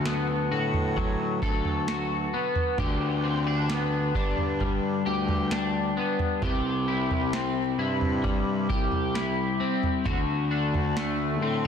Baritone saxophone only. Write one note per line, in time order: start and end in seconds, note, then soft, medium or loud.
0.00 0.47 D2 medium
0.52 1.38 A2 medium
1.42 2.29 D2 medium
2.78 4.11 D2 medium
4.14 5.01 G2 medium
5.06 5.92 D2 medium
6.42 7.74 C2 medium
7.78 8.65 G2 medium
8.70 9.56 C2 loud
10.06 11.44 D2 medium
11.42 11.67 A2 medium